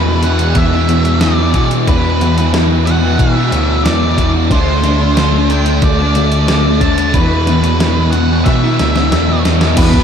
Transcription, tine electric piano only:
Already playing: E2
0.56 E2
0.89 E2
1.22 E2
1.54 B2
1.87 E2
2.21 E2
2.53 E2
3.19 B2
3.52 D2
3.85 E2
4.18 E2
4.51 D2
4.83 D2
5.17 D2
5.82 D2
6.16 D2
6.48 D2
6.81 D#2
7.14 E2
7.47 E2
7.80 E2
8.46 B2
8.79 D2
9.12 E2
9.46 E2
9.77 E2

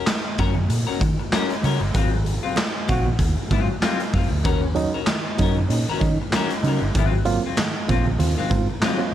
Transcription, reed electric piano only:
4.43 D#3
4.75 F#3 C#4 D#4
4.93 C#4 D#4
5.07 D#3
5.38 F#3 C#4 D#4
5.56 C#4 D#4
5.69 C#4 D#4
5.87 D#3
5.99 C#4 D#4
6.31 D#3
6.63 F#3 C#4 D#4
6.81 C#4 D#4
6.94 G#2 D#3
7.25 F#3 A#3 C4 F4
7.43 C4 F4
7.57 G#2 D#3
7.88 F#3 A#3 C4 F4
8.06 C4 F4
8.19 C4 F4
8.36 G#2 D#3
8.50 C4 F4
8.81 G#2 D#3
8.98 F#3 A#3 C4 F4

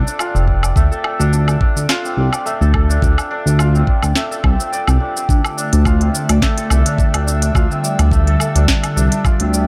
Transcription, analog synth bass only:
0.35 F1
0.76 D2
1.20 D2
1.76 D2
2.17 C2
2.61 D2
3.02 D2
3.46 D2
4.03 D2
4.44 C2
4.88 C2
5.29 D2
5.73 D2
6.29 D2
6.71 C2
7.14 D2
7.55 D2
7.99 D2
8.55 D2
8.96 C2
9.40 D2

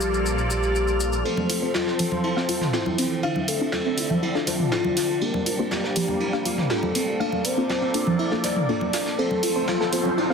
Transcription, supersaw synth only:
Already playing: A#3 F4 A4 D5
1.25 F3 C4 A4 C5
3.23 D3 D4 E5
5.21 G3 A#3
7.20 A#3 A4 D5
9.18 F3 A4 C5

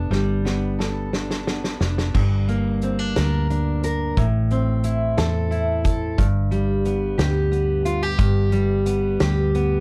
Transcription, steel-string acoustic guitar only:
Already playing: G3 B3 D4 A4
0.11 G3
0.45 B3
0.79 A4
1.13 D4
1.47 B3
1.80 D4
2.14 G2
2.48 A#3
2.83 C4
2.99 D4
3.16 A#4
3.50 D4
3.84 A#4
4.17 A2
4.51 C4
4.84 E4
5.17 A4
5.51 E4
5.84 A4
6.18 G2
6.51 G3
6.85 B3
7.18 G4
7.52 B3
7.85 F4
8.03 G4
8.18 G2
8.52 G3
8.86 B3
9.20 G4
9.55 B3

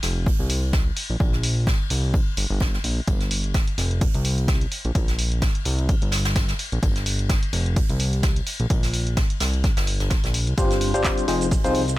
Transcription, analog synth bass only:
0.03 F1
0.39 C2
1.10 A#1
1.20 A#1
1.90 C2
2.37 G1
2.50 G1
2.84 A#1
3.08 G1
3.78 F1
4.15 C2
4.85 A#1
4.95 A#1
5.65 C2
6.02 G1
6.72 A#1
6.83 G1
7.53 F1
7.89 C2
8.60 A#1
8.70 A#1
9.40 C2
9.77 G1
10.00 G1
10.24 A#1
10.47 C2
10.58 G1
11.28 F1
11.65 C2

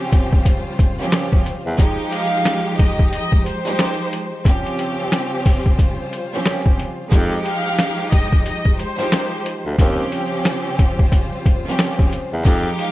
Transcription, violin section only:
2.12 F5
2.78 D#5
3.12 D#5
3.45 C5
7.46 F5
8.11 D#5
8.45 D#5
8.78 C5
12.78 F5

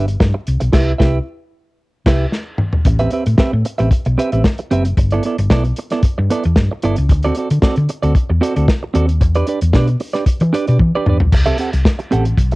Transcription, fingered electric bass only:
Already playing: G1
0.20 G2
0.48 C2
0.62 B1
0.73 C2
1.00 C2
2.06 C2
2.86 A1
3.27 A2
3.53 A2
3.80 A1
4.06 B1
4.33 A1
4.72 F#1
4.98 G1
5.38 G1
5.51 B1
6.03 muted fingered electric bass stroke
6.19 G2
6.45 E2
6.57 G2
6.84 G1
6.98 C#2
7.10 D2
7.51 D3
7.77 D3
8.03 D2
8.30 E2
8.56 D2
8.95 D#2
9.21 E2
9.62 E2
9.74 B2
10.26 muted fingered electric bass stroke
10.41 E3
10.68 B2
10.80 E3
11.07 E2
11.21 B1
11.33 C2
11.74 C2
12.13 A1
12.38 B1

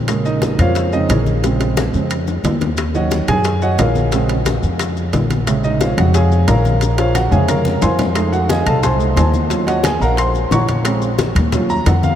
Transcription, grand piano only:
0.08 C#3 G#3 A#3
0.26 D#4 D#5
0.60 F4 C5 C#5 F5
0.92 C#3 G#3 C4 D#4 D#5
1.10 C#4 G#4 A#4 C#5
1.43 C#3 G#3 C4
1.94 C#3 G#3 C4
2.94 D#3 F#3 C#4 F#4 C#5 D#5 F#5
3.29 G#4 G#5
3.62 F#4 C#5 D#5 F#5
3.79 F4 A#4 C#5 F5
4.12 C#3 G#3 C4
5.47 C3 C#3 G#3
5.64 D#4 D#5
5.81 F4 C5 C#5 F5
5.97 C#3 G#3 C4 F#4 F#5
6.15 G#4 C#5 F5 G#5
6.48 A#4 C#5 F5 A#5
6.98 F4 C5 C#5 F5
7.15 F#4 F#5
7.31 C3 C#3 G#3 G#4 C#5 F5 G#5
7.48 A#4 C#5 F5 A#5
7.82 C5 F5 G#5 C6
8.15 G#3 A3 D#4
8.32 F#4 F#5
8.50 G#4 D#5 F5 G#5
8.66 A4 D#5 F5 A5
8.83 C5 G#5 A5 C6
8.99 G#3 A3 D#4
9.17 C5 G#5 A5 C6
9.50 F#3 C#4 F4
9.67 F#4 C#5 D#5 F#5
9.84 G#4 G#5
10.01 A#4 F5 F#5 A#5
10.19 C5 C6
10.52 C#5 F#5 A#5 C#6
10.85 G#3 C4 C#4
11.53 F#3 C#4 F4
11.70 A#5
11.87 F#5
12.04 F5

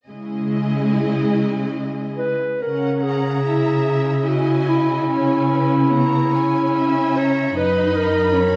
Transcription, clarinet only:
2.17 B4
2.62 A#4
3.02 G#4
4.28 F#4
4.69 E4
7.17 C#5
7.56 B4
7.96 A#4

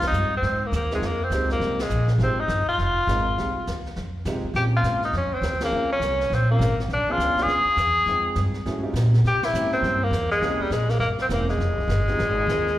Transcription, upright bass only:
0.01 C2
0.12 G2
0.42 G#2
0.72 D#2
1.01 F2
1.30 C#2
1.60 C2
1.90 A#1
2.18 G#1
2.48 G1
2.67 muted upright bass stroke
2.78 F1
3.07 G#1
3.38 C2
3.68 D#2
3.97 F2
4.25 C3
4.44 muted upright bass stroke
4.54 A#2
4.83 G#2
5.13 F2
5.32 muted upright bass stroke
5.42 D#2
5.71 C#2
6.00 C2
6.30 A#1
6.59 G#1
6.88 B1
7.05 muted upright bass stroke
7.18 C#2
7.35 muted upright bass stroke
7.46 D2
7.65 muted upright bass stroke
7.76 E2
8.06 F2
8.36 G2
8.66 G#2
8.94 A#2
9.24 C3
9.53 G#2
9.82 G2
10.11 E2
10.41 C2
10.59 muted upright bass stroke
10.70 A#1
10.99 G1
11.29 E1
11.58 F1
11.88 G1
12.19 G#1
12.47 D#2

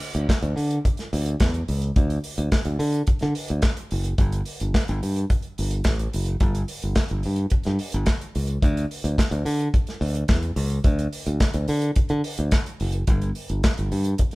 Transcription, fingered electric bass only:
0.15 D2
0.42 D2
0.56 D3
1.13 D2
1.41 E2
1.69 C#2
1.96 D2
2.38 D2
2.65 D2
2.79 D3
3.23 D3
3.50 D2
3.92 F#1
4.19 G1
4.61 G1
4.89 G1
5.03 G2
5.59 G1
5.86 A1
6.14 F#1
6.41 G1
6.84 G1
7.11 G1
7.26 G2
7.52 muted fingered electric bass stroke
7.67 G2
7.94 G1
8.36 C#2
8.63 D2
9.04 D2
9.31 D2
9.45 D3
10.01 D2
10.29 E2
10.56 C#2
10.84 D2
11.27 D2
11.54 D2
11.69 D3
11.96 muted fingered electric bass stroke
12.10 D3
12.39 D2
12.81 F#1
13.08 G1
13.50 G1
13.79 G1
13.92 G2

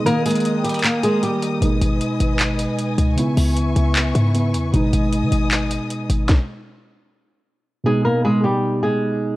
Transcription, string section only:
Already playing: D#5 D#6
0.06 A#4 G5
1.62 B4 D#5 G#5
3.18 B4 E5 C#6
4.73 D#5 G#5 D#6

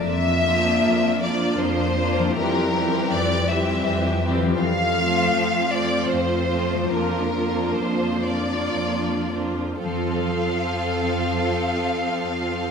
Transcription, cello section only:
0.05 F2
0.84 F2
1.61 F2
2.37 F2
3.13 F2
3.87 F2
4.60 F2
5.33 F2
6.10 F2
6.92 F2
7.80 F2
8.77 F2
9.85 F2

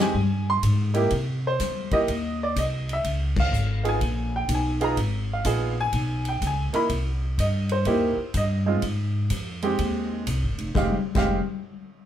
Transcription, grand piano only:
Already playing: G#3 C4
0.00 D#4 G4 G#5
0.50 C6
0.94 A#3 D#4 E4 G4
1.47 C5
1.92 A#3 D#4 E4 G4 D#5
2.43 D5
2.59 D#5
2.93 E5
3.40 F5
3.83 B3 D#4 F4 G#4
3.89 G#5
4.36 G5
4.55 G#5
4.81 B3 D#4 F4 G#4 A#5
5.33 F5
5.45 B3 D#4 F4 G#4
5.80 G#5
6.29 G5
6.47 G#5
6.73 A#3 D#4 E4 A#4 B5
7.40 D#5
7.72 C5
7.86 A#3 D#4 E4 G4
8.37 D#5
8.66 G#3 C4 D#4 F4
9.63 G#3 C4 D#4 G4
10.76 G#3 C4 D#4 G4 F5
11.15 G#3 C4 D#4 G4 F5

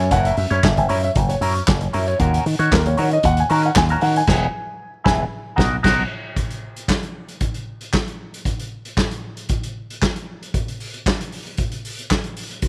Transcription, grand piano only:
Already playing: G#5
0.12 F#5
0.26 E5
0.38 E5
0.52 C#5
0.65 E5
0.78 E5
0.90 C#5
1.04 E5
1.29 C#5
2.73 A#4
2.87 C#5
3.00 C#5
3.13 D#5
3.25 F#5
3.40 G#5
3.52 A#5
3.66 F#5
3.77 G#5
3.91 A#5
4.02 F#5
4.17 G#5

